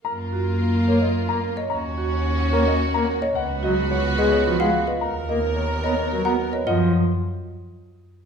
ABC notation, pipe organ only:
X:1
M:3/4
L:1/16
Q:1/4=109
K:F#
V:1 name="Pipe organ"
z6 A, z2 A, z2 | z6 A, z2 A, z2 | z2 F, z3 G, z E, G, z2 | z2 A, z3 B, z F, B, z2 |
E,2 z8 z2 |]